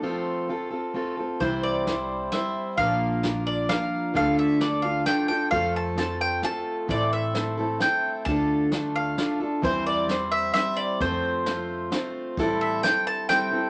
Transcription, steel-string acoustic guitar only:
\new Staff \with { instrumentName = "Steel-string acoustic guitar" } { \time 3/4 \key c \mixolydian \tempo 4 = 131 <f a c' f' a'>4 <a c' f' a'>8 <c' f' a'>8 <a c' f' a'>8 <c' f' a'>8 | <c e g c' e' c''>4 <g c' e' c''>4 <g c' e' c''>4 | <bes, f bes d' f' bes'>4 <bes d' f' bes'>4 <bes d' f' bes'>4 | <d a d' f' a'>4 <a d' f' a'>8 <d' f' a'>8 <a d' f' a'>8 <d' f' a'>8 |
<f a c' f' a'>4 <a c' f' a'>4 <a c' f' a'>4 | <a, e a c' e' a'>4 <a c' e' a'>8 <a c' e' a'>8 <a c' e' a'>4 | <d a d' f' a'>4 <a d' f' a'>4 <a d' f' a'>8 <d' f' a'>8 | <e g c' e' c''>4 <g c' e' c''>4 <g c' e' c''>4 |
<f a c' f' c''>4 <a c' f' c''>4 <a c' f' c''>4 | <a, e g c' e' a'>4 <g c' e' a'>4 <g c' e' a'>8 <g c' e' a'>8 | }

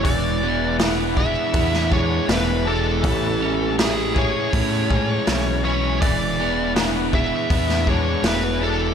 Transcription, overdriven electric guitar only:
\new Staff \with { instrumentName = "Overdriven electric guitar" } { \time 4/4 \key e \mixolydian \tempo 4 = 80 e8 b8 e'8 gis'8 e'8 gis'8 b8 e'8 | r8 cis'8 e'8 gis'8 e'8 gis'8 cis'8 e'8 | e8 b8 e'8 gis'8 e'8 gis'8 b8 e'8 | }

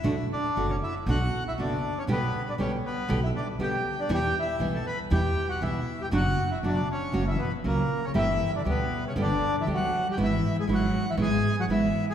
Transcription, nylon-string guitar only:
\new Staff \with { instrumentName = "Nylon-string guitar" } { \time 4/4 \key b \minor \tempo 4 = 119 <b, d b d' fis'>8 r8 <b, d b d' fis'>8 r8 <b, d b d' fis'>8 r8 <b, d b d' fis'>8 r8 | <b, d g b g'>8 r8 <b, d g b g'>8 r8 <b, d g b g'>8 r8 <b, d g b g'>8 r8 | <b, e g b e'>8 r8 <b, e g b e'>8 r8 <b, e g b e'>8 r8 <b, e g b e'>8 r8 | <b, fis b d' fis'>8 r8 <b, fis b d' fis'>8 r8 <cis fis ais cis' fis'>8 r8 <cis fis ais cis' fis'>8 r8 |
<d g b g'>8 r8 <d g b g'>8 r8 <d g b g'>8 r8 <d g b g'>8 r8 | <gis b e'>8 r8 <gis b e'>8 r8 <gis b e'>8 r8 <gis b e'>8 r8 | }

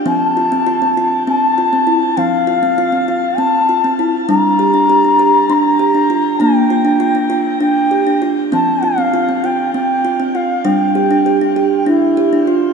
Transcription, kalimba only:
<<
  \new Staff \with { instrumentName = "Kalimba" } { \time 7/8 \key f \major \tempo 4 = 99 c'8 f'16 c'16 f'16 c'16 f'8 c'8 f'16 c'16 e'8 | c'8 f'16 c'16 f'16 c'16 f'8 c'8 f'16 c'16 e'8 | d'8 g'16 d'16 g'16 d'16 g'8 d'8 g'16 d'16 f'8 | d'8 f'16 d'16 f'16 d'16 f'8 d'8 g'16 d'16 f'8 |
c'8 f'16 c'16 f'16 c'16 f'8 c'8 f'16 c'16 f'8 | d'8 g'16 d'16 g'16 d'16 g'8 d'8 g'16 d'16 f'8 | }
  \new Staff \with { instrumentName = "Kalimba" } { \clef bass \time 7/8 \key f \major f2.~ f8 | f2.~ f8 | g2.~ g8 | bes2.~ bes8 |
f2.~ f8 | g2.~ g8 | }
>>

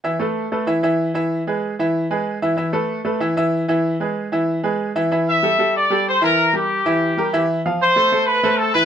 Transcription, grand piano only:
\new Staff \with { instrumentName = "Grand piano" } { \time 4/4 \key e \phrygian \tempo 4 = 189 <e e' e''>8 <a a' b'>4 <a a' b'>8 <e e' e''>8 <e e' e''>4 <e e' e''>8~ | <e e' e''>8 <gis gis' b'>4 <e e' e''>4 <gis gis' b'>4 <e e' e''>8 | <e e' e''>8 <a a' b'>4 <a a' b'>8 <e e' e''>8 <e e' e''>4 <e e' e''>8~ | <e e' e''>8 <gis gis' b'>4 <e e' e''>4 <gis gis' b'>4 <e e' e''>8 |
\key a \minor <e e' e''>4 <g g' a'>8 <g g' a'>4 <g g' a'>4 <e e' e''>8~ | <e e' e''>8 <g g' bes'>4 <e e' e''>4 <g g' bes'>8 <e e' e''>4 | <f f' f''>4 <a a' c''>8 <a a' c''>4 <a a' c''>4 <e e' e''>8 | }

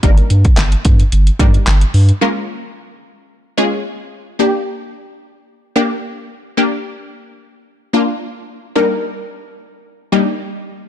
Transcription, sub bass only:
\new Staff \with { instrumentName = "Sub bass" } { \clef bass \time 4/4 \key g \phrygian \tempo 4 = 110 g,,8 g,8 g,,8 g,8 g,,8 g,8 g,,8 g,8 | r1 | r1 | r1 |
r1 | }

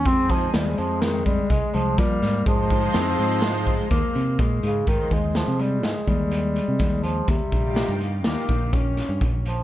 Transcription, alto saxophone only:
\new Staff \with { instrumentName = "Alto saxophone" } { \clef bass \time 5/4 \key aes \major \tempo 4 = 124 aes1 bes4 | aes4 c'4 aes4 bes4 aes4 | aes1~ aes4 | g2 bes4 des'4. r8 | }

